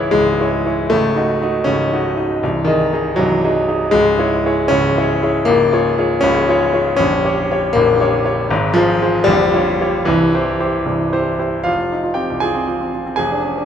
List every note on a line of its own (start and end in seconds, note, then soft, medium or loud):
0.00 0.14 C#1 medium
0.00 0.13 C#2 medium
0.00 0.12 E3 loud
0.00 0.41 E4 medium
0.00 0.41 G#4 medium
0.00 0.41 C#5 medium
0.11 0.39 C#1 medium
0.11 0.38 C#2 medium
0.11 0.90 G#3 loud
0.41 0.63 E4 medium
0.41 0.64 G#4 medium
0.41 0.64 C#5 medium
0.66 0.89 E4 medium
0.66 0.89 G#4 medium
0.66 0.89 C#5 medium
0.90 1.16 C#1 medium
0.90 1.16 C#2 medium
0.90 1.66 A3 loud
1.16 1.39 D#4 medium
1.16 1.39 F#4 medium
1.16 1.39 D#5 medium
1.42 1.64 D#4 medium
1.42 1.65 F#4 medium
1.42 1.65 D#5 medium
1.64 1.91 C#1 medium
1.64 1.91 C#2 medium
1.64 2.42 C#4 loud
1.92 2.15 D#4 medium
1.92 2.15 F#4 medium
1.92 2.16 D#5 medium
2.17 2.40 D#4 medium
2.17 2.40 F#4 medium
2.17 2.40 D#5 medium
2.43 2.67 C1 medium
2.43 2.67 C2 medium
2.65 3.17 D#3 loud
2.65 2.90 D#4 medium
2.65 2.90 G#4 medium
2.65 2.90 D#5 medium
2.93 3.16 D#4 medium
2.93 3.16 G#4 medium
2.93 3.16 D#5 medium
3.16 3.43 C1 medium
3.16 3.43 C2 medium
3.16 3.92 F#3 loud
3.44 3.66 D#4 medium
3.44 3.66 G#4 medium
3.44 3.67 D#5 medium
3.68 3.91 D#4 medium
3.68 3.91 G#4 medium
3.68 3.91 D#5 medium
3.91 4.19 C#1 medium
3.91 4.18 C#2 medium
3.91 4.71 G#3 loud
4.18 4.43 E4 medium
4.18 4.43 G#4 medium
4.18 4.43 C#5 medium
4.45 4.69 E4 medium
4.45 4.69 G#4 medium
4.45 4.70 C#5 medium
4.68 4.96 C#1 medium
4.68 4.96 C#2 medium
4.68 5.45 C#4 loud
4.98 5.20 E4 medium
4.98 5.20 G#4 medium
4.98 5.20 C#5 medium
5.23 5.45 E4 medium
5.23 5.45 G#4 medium
5.23 5.45 C#5 medium
5.45 5.72 C#1 medium
5.45 5.72 C#2 loud
5.45 6.22 A#3 loud
5.72 5.95 F4 medium
5.72 5.95 G#4 medium
5.72 5.96 C#5 medium
5.98 6.21 F4 medium
5.98 6.21 G#4 medium
5.98 6.21 C#5 medium
6.21 6.47 C#1 loud
6.21 6.48 C#2 loud
6.21 6.95 C#4 loud
6.48 6.71 F4 medium
6.48 6.71 G#4 medium
6.48 6.72 C#5 medium
6.73 6.96 F4 medium
6.73 6.96 G#4 medium
6.73 6.96 C#5 medium
6.96 7.23 A#0 medium
6.96 7.23 A#1 loud
6.96 7.73 C#4 loud
7.25 7.47 G4 medium
7.25 7.47 C#5 medium
7.51 7.73 G4 medium
7.51 7.73 C#5 medium
7.73 7.99 A#0 loud
7.73 7.99 A#1 medium
7.73 8.50 A#3 loud
8.00 8.23 G4 medium
8.00 8.23 C#5 medium
8.25 8.48 G4 medium
8.25 8.48 C#5 medium
8.50 8.75 G#1 loud
8.50 8.75 G#2 medium
8.74 9.27 F3 loud
8.74 8.99 F4 medium
8.74 9.00 G#4 medium
8.74 9.00 C5 medium
9.02 9.25 F4 medium
9.02 9.25 G#4 medium
9.02 9.26 C5 medium
9.24 9.53 A#0 medium
9.24 9.53 A#1 loud
9.24 10.06 G3 loud
9.54 9.78 F4 medium
9.54 9.78 G4 medium
9.54 9.78 C#5 medium
9.81 10.05 F4 medium
9.81 10.05 G4 medium
9.81 10.05 C#5 medium
10.05 10.33 C1 medium
10.05 10.34 C2 medium
10.05 10.86 E3 loud
10.34 10.58 E4 medium
10.34 10.58 G4 medium
10.34 10.59 C5 medium
10.60 10.84 E4 medium
10.60 10.84 G4 medium
10.60 10.85 C5 medium
10.85 11.12 C1 medium
10.85 11.12 C2 medium
11.13 11.38 E4 medium
11.13 11.37 G4 medium
11.13 11.38 C5 medium
11.39 11.64 E4 medium
11.39 11.64 G4 medium
11.39 11.64 C5 medium
11.63 13.16 F1 medium
11.63 11.77 F4 medium
11.63 12.17 F5 medium
11.79 12.00 F4 medium
11.92 12.06 D#4 medium
12.04 12.26 F4 medium
12.14 12.38 C4 medium
12.14 12.41 G4 medium
12.14 12.42 G5 medium
12.30 12.51 C2 medium
12.40 12.64 F4 medium
12.40 13.16 G#4 medium
12.40 13.14 G#5 loud
12.55 12.77 C4 medium
12.68 12.89 F4 medium
12.81 13.03 C4 medium
12.94 13.15 F4 medium
13.06 13.20 C4 medium
13.16 13.65 F1 medium
13.16 13.65 G#4 medium
13.16 13.65 G#5 loud
13.32 13.53 D4 medium
13.44 13.58 C#4 medium
13.58 13.65 D4 medium